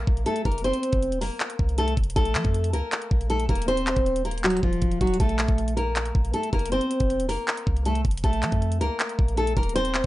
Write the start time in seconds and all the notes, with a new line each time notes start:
Already playing: A#3 A#4
0.07 A#1, kick
0.17 closed hi-hat
0.26 A3 A4, closed hi-hat
0.36 closed hi-hat
0.45 F1 A#3 A#4, kick, closed hi-hat
0.52 closed hi-hat
0.58 closed hi-hat
0.64 C4 C5, closed hi-hat
0.73 closed hi-hat
0.83 closed hi-hat
0.92 F1, kick, closed hi-hat
1.02 closed hi-hat
1.12 D#1, closed hi-hat
1.21 F1 A#3 A#4, open hi-hat
1.40 clap, closed hi-hat
1.50 closed hi-hat
1.59 C2, kick
1.69 closed hi-hat
1.78 A3 A4, closed hi-hat
1.88 closed hi-hat
1.97 F1, kick, closed hi-hat
2.04 closed hi-hat
2.10 closed hi-hat
2.16 A#1 A3 A4, kick, closed hi-hat
2.25 closed hi-hat
2.35 F3, clap, closed hi-hat
2.44 F2, kick, closed hi-hat
2.54 closed hi-hat
2.64 closed hi-hat
2.73 C#2 A#3 A#4, closed hi-hat
2.92 clap, closed hi-hat
3.02 closed hi-hat
3.11 A#1, kick
3.21 closed hi-hat
3.30 A3 A4, closed hi-hat
3.40 closed hi-hat
3.49 D#1 A#3 A#4, kick, closed hi-hat
3.55 closed hi-hat
3.62 closed hi-hat
3.68 C4 C5, closed hi-hat
3.77 closed hi-hat
3.87 clap, closed hi-hat
3.96 D#1, kick, closed hi-hat
4.06 closed hi-hat
4.16 closed hi-hat
4.25 A#3 A#4, closed hi-hat
4.31 closed hi-hat
4.38 closed hi-hat
4.44 F#3 F#4, clap, closed hi-hat
4.50 closed hi-hat
4.57 closed hi-hat
4.63 D#1 F3 F4, kick
4.73 closed hi-hat
4.82 D#1, kick, closed hi-hat
4.91 closed hi-hat
5.01 D#1 F#3 F#4, kick, closed hi-hat
5.07 closed hi-hat
5.14 closed hi-hat
5.20 A#1 A3 A4, kick, closed hi-hat
5.29 closed hi-hat
5.39 clap, closed hi-hat
5.48 A#1, kick, closed hi-hat
5.58 closed hi-hat
5.68 closed hi-hat
5.77 A#3 A#4, closed hi-hat
5.96 clap, closed hi-hat
6.05 closed hi-hat
6.15 A#1, kick
6.25 closed hi-hat
6.34 A3 A4, closed hi-hat
6.43 closed hi-hat
6.53 F1 A#3 A#4, kick, closed hi-hat
6.59 closed hi-hat
6.66 closed hi-hat
6.72 C4 C5, closed hi-hat
6.81 closed hi-hat
6.91 closed hi-hat
7.00 F1, kick, closed hi-hat
7.10 closed hi-hat
7.19 D#1, closed hi-hat
7.29 F1 A#3 A#4, open hi-hat
7.48 clap, closed hi-hat
7.57 closed hi-hat
7.67 C2, kick
7.77 closed hi-hat
7.85 A3 A4, closed hi-hat
7.95 closed hi-hat
8.05 F1, kick, closed hi-hat
8.11 closed hi-hat
8.17 closed hi-hat
8.24 A#1 A3 A4, kick, closed hi-hat
8.33 closed hi-hat
8.43 F3, clap, closed hi-hat
8.52 F2, kick, closed hi-hat
8.62 closed hi-hat
8.72 closed hi-hat
8.81 C#2 A#3 A#4, closed hi-hat
9.00 clap, closed hi-hat
9.09 closed hi-hat
9.19 A#1, kick
9.28 closed hi-hat
9.37 A3 A4, closed hi-hat
9.47 closed hi-hat
9.57 D#1 A#3 A#4, kick, closed hi-hat
9.63 closed hi-hat
9.69 closed hi-hat
9.76 C4 C5, closed hi-hat
9.85 closed hi-hat
9.95 clap, closed hi-hat